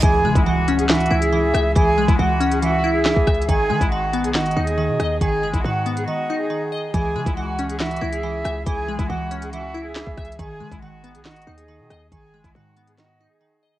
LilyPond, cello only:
\new Staff \with { instrumentName = "Cello" } { \time 4/4 \key cis \dorian \tempo 4 = 139 gis'8. e'16 fis'8. gis'16 fis'8. gis'4~ gis'16 | gis'8. e'16 fis'8. gis'16 fis'8. gis'4~ gis'16 | gis'8. e'16 fis'8. gis'16 fis'8. gis'4~ gis'16 | gis'8. e'16 fis'8. gis'16 fis'8. gis'4~ gis'16 |
gis'8. e'16 fis'8. gis'16 fis'8. gis'4~ gis'16 | gis'8. e'16 fis'8. gis'16 fis'8. gis'4~ gis'16 | gis'8. e'16 fis'8. gis'16 fis'8. gis'4~ gis'16 | gis'8. e'16 fis'8. gis'16 fis'8. gis'4~ gis'16 | }